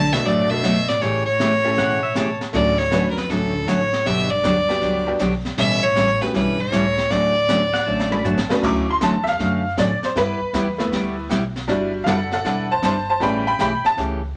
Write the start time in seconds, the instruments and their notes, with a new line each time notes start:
Already playing: upright bass B1, cello D3, fiddle A5
0.12 cello B2, honky-tonk piano A3 B3 D4 F#4 A4, fiddle E5, snare
0.25 upright bass F#1, cello A2, steel-string acoustic guitar B2 F#3 A3 D4 F#4, fiddle D5, brush sweep, snare
0.50 cello B2, honky-tonk piano A3 B3 D4 F#4 A4, fiddle E5
0.63 steel-string acoustic guitar B2 F#3 A3 D4 F#4, snare, hi-hat pedal
0.89 cello A2, fiddle D5, snare
1.01 upright bass A1, cello A2, steel-string acoustic guitar C#3 E3 A3 C#4 G4, fiddle C#5, brush sweep, snare
1.26 cello A2, fiddle C#5
1.40 steel-string acoustic guitar C#3 E3 A3 C#4 G4, snare, hi-hat pedal
1.64 honky-tonk piano A3 C#4 E4 G4 A4
1.77 upright bass E1, steel-string acoustic guitar C#3 E3 A3 C#4 G4, pedal steel guitar F#5, brush sweep, snare
2.03 pedal steel guitar E5
2.15 steel-string acoustic guitar C#3 E3 A3 C#4 G4, pedal steel guitar A5, snare, hi-hat pedal
2.41 snare
2.53 upright bass D2, cello A2, steel-string acoustic guitar D3 F#3 A3 C#4 F#4, honky-tonk piano A3 C#4 D4 F#4 A4, fiddle D5, brush sweep, snare
2.78 cello A2, fiddle C#5, snare
2.91 steel-string acoustic guitar D3 F#3 A3 C#4 F#4, honky-tonk piano A3 C#4 D4 F#4 B4, snare, hi-hat pedal
3.11 cello F#2, fiddle A#4
3.16 cello F#2, fiddle B4, snare
3.30 upright bass A1, cello D2, steel-string acoustic guitar D3 F#3 A3 C#4 F#4, fiddle A4, brush sweep, snare
3.67 cello A2, steel-string acoustic guitar D3 F#3 A3 C#4 F#4, fiddle C#5, snare, hi-hat pedal
3.93 snare
4.05 upright bass G1, cello B2, steel-string acoustic guitar D3 F#3 B3 D4 G4, fiddle E5, brush sweep, snare
4.31 cello G2, fiddle D5
4.43 upright bass D2, steel-string acoustic guitar D3 F#3 B3 D4 G4, snare, hi-hat pedal
4.68 honky-tonk piano G3 B3 D4 F#4 G4, snare
4.81 upright bass C#2, steel-string acoustic guitar D3 F#3 B3 D4 G4, brush sweep, snare
5.06 honky-tonk piano G3 B3 D4 F#4 G4
5.19 upright bass B1, steel-string acoustic guitar D3 F#3 B3 D4 G4, snare, hi-hat pedal
5.45 snare
5.57 upright bass A1, cello B2, steel-string acoustic guitar E3 G3 C#4 E4 A4, fiddle E5, brush sweep, snare
5.82 cello A2, fiddle C#5
5.95 upright bass A1, steel-string acoustic guitar E3 G3 C#4 E4 A4, snare, hi-hat pedal
6.21 cello G2, honky-tonk piano A3 B3 C#4 F#4 G4, fiddle B4, snare
6.34 upright bass B1, cello G2, steel-string acoustic guitar E3 G3 C#4 E4 A4, fiddle B4, brush sweep, snare
6.59 cello A2, fiddle C#5
6.72 upright bass C#2, steel-string acoustic guitar E3 G3 C#4 E4 A4, snare, hi-hat pedal
6.97 snare
7.10 upright bass D2, cello A2, steel-string acoustic guitar D3 F#3 A3 C#4 F#4, fiddle D5, brush sweep, snare
7.48 steel-string acoustic guitar D3 F#3 A3 C#4 F#4, snare, hi-hat pedal
7.74 pedal steel guitar F#5, snare
7.86 upright bass A1, steel-string acoustic guitar D3 F#3 A3 C#4 F#4, pedal steel guitar A5
7.99 snare
8.11 honky-tonk piano A3 C#4 D4 F#4 A4, pedal steel guitar B5, high tom
8.24 steel-string acoustic guitar D3 F#3 A3 C#4 F#4, pedal steel guitar A5, floor tom, hi-hat pedal
8.38 snare
8.49 honky-tonk piano A3 C#4 D4 F#4 B4, snare
8.62 upright bass D2, steel-string acoustic guitar D3 F#3 A3 C#4 F#4, honky-tonk piano F#3 C#4 E4 D6, brush sweep, kick, snare, crash
8.90 honky-tonk piano C6
9.01 upright bass E2, steel-string acoustic guitar D3 F#3 A3 C#4 F#4, honky-tonk piano A5, snare, hi-hat pedal
9.24 honky-tonk piano E5, snare
9.28 honky-tonk piano F5
9.39 upright bass F#2, steel-string acoustic guitar D3 F#3 A3 C#4 F#4, brush sweep, snare
9.77 upright bass A2, steel-string acoustic guitar D3 F#3 A3 C#4 F#4, honky-tonk piano D5, snare, hi-hat pedal
10.03 honky-tonk piano C5, muted upright bass stroke, snare
10.16 upright bass G2, steel-string acoustic guitar G3 B3 E4 G4, honky-tonk piano B4, brush sweep, snare
10.41 muted upright bass stroke
10.53 upright bass E2, steel-string acoustic guitar G3 B3 E4 G4, snare, hi-hat pedal
10.78 honky-tonk piano A3 B3 E4, snare
10.92 upright bass D2, steel-string acoustic guitar G3 B3 E4 G4, brush sweep, snare
11.29 upright bass B1, steel-string acoustic guitar G3 B3 E4 G4, snare, hi-hat pedal
11.56 snare
11.68 upright bass G1, honky-tonk piano G3 D4 F#4, steel-string acoustic guitar G3 D4 E4 B4, brush sweep, snare
12.04 upright bass F#1, steel-string acoustic guitar G3 D4 E4 B4, honky-tonk piano A4 F5, snare, hi-hat pedal
12.08 honky-tonk piano F#5
12.32 honky-tonk piano A4 F#5, snare
12.44 upright bass E1, steel-string acoustic guitar G3 D4 E4 B4, honky-tonk piano A4 F#5, brush sweep, snare
12.71 honky-tonk piano C5 A5
12.82 upright bass G1, steel-string acoustic guitar G3 D4 E4 B4, honky-tonk piano C5 A5, snare, hi-hat pedal
13.09 honky-tonk piano C5 A5
13.20 upright bass A1, steel-string acoustic guitar C#3 E3 A3 C#4 G4, honky-tonk piano G3 B3 C#4 G5 B5, brush sweep, snare
13.47 honky-tonk piano G5 B5
13.59 upright bass B1, steel-string acoustic guitar C#3 E3 A3 C#4 G4, honky-tonk piano G5 B5, snare, hi-hat pedal
13.84 honky-tonk piano A5, muted upright bass stroke, snare
13.97 upright bass C#2, steel-string acoustic guitar C#3 E3 A3 C#4 G4, brush sweep, snare